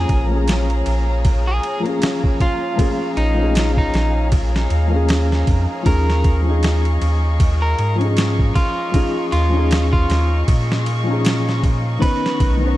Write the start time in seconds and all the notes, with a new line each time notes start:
Already playing: F3 A#3 C#4 G#4 C#5 F5 A#5
0.09 A#1, kick, ride
0.26 F3 A#3
0.33 C#4 G#4
0.48 snare, ride
0.70 ride
0.86 A#1, ride
1.25 kick, ride
1.47 G#4
1.63 ride
1.80 F3 A#3
1.86 C#4 G#4, ride
2.02 snare, ride
2.24 kick
2.40 F4, kick, ride
2.76 F3 A#3 C#4, kick, ride
2.81 G#4
3.16 A#1 D#4, ride
3.34 F3 A#3
3.40 C#4 G#4
3.55 snare, ride
3.77 D#4, kick
3.94 A#1, snare, ride
4.32 kick, ride
4.56 snare
4.70 D#2, ride
4.87 F3 A#3
4.93 C#4 G#4
5.09 snare, ride
5.32 snare
5.47 F2, kick, ride
5.83 D#2 F3 C#4 D#4 A#4 D#5 C#6, kick, ride
5.87 G#4
6.10 snare
6.24 kick, ride
6.42 F3 C#4
6.48 D#4 G#4
6.63 snare, ride
6.85 ride
7.01 D#2, ride
7.40 kick, ride
7.62 A#4
7.78 G#2, ride
7.95 F3 C#4
8.01 D#4 G#4, ride
8.17 snare, ride
8.39 kick
8.55 F4, kick, ride
8.91 F3 C#4 D#4, kick, ride
8.96 G#4
9.32 D#2 F4, ride
9.49 F3 C#4
9.55 D#4 G#4
9.71 snare, ride
9.93 F4, kick
10.09 D#2, snare, ride
10.48 A#2, kick, ride
10.72 snare
10.86 ride
11.04 F3 C#4
11.10 D#4 G#4
11.25 snare, ride
11.49 snare
11.63 kick, ride
11.99 D#3 B3 C#4 B4 A#5, kick, ride
12.03 B4
12.26 snare
12.40 B1, kick, ride
12.57 D#3 B3
12.64 C#4 B4